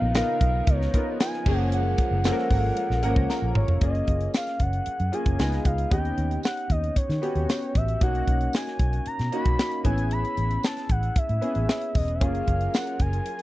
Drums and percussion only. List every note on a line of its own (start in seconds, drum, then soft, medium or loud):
0.15 snare loud
0.15 closed hi-hat medium
0.15 tambourine medium
0.41 kick medium
0.41 closed hi-hat medium
0.67 kick loud
0.67 closed hi-hat medium
0.82 snare soft
0.94 kick medium
0.94 closed hi-hat medium
1.20 snare loud
1.20 closed hi-hat medium
1.20 tambourine medium
1.33 snare soft
1.46 kick loud
1.46 crash medium
1.72 closed hi-hat medium
1.98 kick medium
1.98 closed hi-hat medium
2.24 snare loud
2.24 closed hi-hat medium
2.24 tambourine medium
2.38 snare soft
2.50 kick medium
2.50 open hi-hat medium
2.77 closed hi-hat loud
2.91 snare soft
3.03 closed hi-hat medium
3.16 kick medium
3.30 snare medium
3.30 tambourine medium
3.55 mid tom loud
3.68 floor tom loud
3.81 kick loud
3.81 closed hi-hat medium
3.95 closed hi-hat soft
4.07 kick medium
4.07 closed hi-hat medium
4.21 closed hi-hat soft
4.34 snare loud
4.34 tambourine medium
4.47 snare soft
4.47 closed hi-hat medium
4.59 kick medium
4.59 closed hi-hat medium
4.73 closed hi-hat soft
4.86 closed hi-hat medium
5.00 closed hi-hat soft
5.13 closed hi-hat medium
5.26 kick medium
5.26 closed hi-hat soft
5.39 snare loud
5.39 tambourine medium
5.52 snare soft
5.52 closed hi-hat soft
5.65 kick loud
5.65 closed hi-hat medium
5.78 closed hi-hat medium
5.91 kick loud
5.91 closed hi-hat medium
6.05 closed hi-hat soft
6.18 closed hi-hat medium
6.31 closed hi-hat soft
6.43 snare loud
6.43 tambourine medium
6.57 closed hi-hat soft
6.70 kick medium
6.70 closed hi-hat medium
6.84 closed hi-hat soft
6.96 kick loud
6.96 closed hi-hat medium
7.10 snare soft
7.10 closed hi-hat soft
7.23 closed hi-hat medium
7.35 closed hi-hat soft
7.49 snare loud
7.49 tambourine medium
7.62 closed hi-hat soft
7.75 kick loud
7.75 closed hi-hat medium
7.88 closed hi-hat medium
8.01 kick loud
8.01 closed hi-hat medium
8.15 closed hi-hat medium
8.27 kick medium
8.27 closed hi-hat medium
8.41 closed hi-hat soft
8.53 snare medium
8.53 tambourine medium
8.67 snare soft
8.67 closed hi-hat soft
8.79 kick medium
8.79 closed hi-hat medium
8.93 closed hi-hat soft
9.06 closed hi-hat medium
9.19 snare soft
9.19 closed hi-hat soft
9.32 closed hi-hat medium
9.45 kick medium
9.45 closed hi-hat soft
9.59 snare loud
9.59 tambourine medium
9.71 closed hi-hat soft
9.85 kick loud
9.85 closed hi-hat medium
9.98 closed hi-hat medium
10.11 closed hi-hat medium
10.25 closed hi-hat medium
10.37 closed hi-hat medium
10.51 closed hi-hat soft
10.63 snare medium
10.63 tambourine medium
10.77 snare soft
10.77 closed hi-hat medium
10.89 kick medium
10.89 closed hi-hat medium
11.03 closed hi-hat soft
11.16 kick loud
11.16 closed hi-hat medium
11.29 closed hi-hat soft
11.42 closed hi-hat medium
11.55 closed hi-hat soft
11.69 snare loud
11.69 tambourine medium
11.81 closed hi-hat soft
11.95 kick loud
11.95 open hi-hat medium
12.08 closed hi-hat medium
12.21 kick loud
12.21 closed hi-hat medium
12.35 closed hi-hat medium
12.47 kick medium
12.47 closed hi-hat medium
12.61 closed hi-hat soft
12.74 snare loud
12.74 tambourine medium
12.87 closed hi-hat medium
12.99 kick medium
12.99 closed hi-hat medium
13.13 closed hi-hat soft
13.26 closed hi-hat medium
13.39 closed hi-hat soft